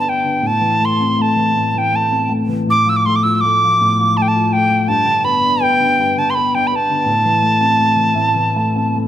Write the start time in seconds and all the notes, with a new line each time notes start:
Already playing: G2 D3 B3 D4
0.00 B3 A5
0.09 G5
0.24 D3
0.42 A2
0.47 A5
0.61 E3
0.80 A3
0.85 C6
1.00 C4
1.18 A3 A5
1.36 E3
1.55 A2
1.72 E3 A5
1.78 G5
1.92 A3 A5
2.11 C4
2.29 A3
2.49 E3
2.67 A2 D6
2.85 F3 E6
2.96 D6
3.05 A3 C6
3.16 D6
3.23 F4 E6
3.35 E6
3.41 A3 D6
3.64 F3
3.81 A2
3.99 F3
4.17 A3 A5
4.22 G5
4.28 A5
4.36 F4
4.53 A3 G5
4.70 F3
4.88 G2 A5
5.05 D3
5.24 B3 B5
5.41 D4
5.60 B3 G5
5.80 D3
5.99 G2
6.17 D3 A5
6.30 C6
6.35 B3 B5
6.55 D4 G5
6.67 B5
6.71 B3
6.76 A5
6.90 D3
7.06 A2
7.25 E3
7.42 A3
7.60 C4
7.78 A3
7.96 E3
8.15 A2 E5
8.35 E3
8.56 A3 A5
8.75 C4
8.95 A3